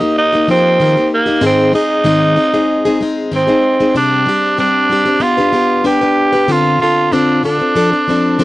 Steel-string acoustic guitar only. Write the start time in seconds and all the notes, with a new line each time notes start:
0.00 A#3 D#4 G4
0.33 A#3 D#4 G4
0.48 F3 A#3 D#4 G4
0.80 D#3 F3 A#3 D#4 G4
0.97 A#3 D#4 G4
1.26 A#3 D#4 G4
1.41 G#2 D#3 G#3 C4 D#4 G#4
1.73 G#3 C4 D#4 G#4
2.04 G#2 D#3 G#3 C4 D#4 G#4
2.36 G#3 C4 D#4 G#4
2.54 G#3 C4 D#4 G#4
2.85 G#3 C4 D#4 G#4
3.01 G#3 C4 D#4 G#4
3.31 G#2 D#3 G#3 C4 D#4 G#4
3.47 G#3 C4 D#4 G#4
3.80 G#3 C4 D#4 G#4
3.95 C3 G3 C4 D4 G4
4.26 G3 C4 D4 G4
4.57 C3 G3 C4 D4 G4
4.90 G3 C4 D4 G4
5.05 C4 D4 G4
5.20 B3 D4 G4 B4
5.37 D4 G4 B4
5.53 B3 D4 G4 B4
5.84 B3 D4 G4 B4
6.01 D4 G4 B4
6.33 D4 G4 B4
6.48 D3 C4 F4 A4
6.80 D3 C4 F4 A4
7.12 D3 C4 F4 A4
7.43 D3 C4 F4 A4
7.59 C4 F4 A4
7.75 F3 C4 D4 A4
7.91 C4 D4 A4
8.08 F3 C4 D4 A4
8.39 F3 C4 D4 A4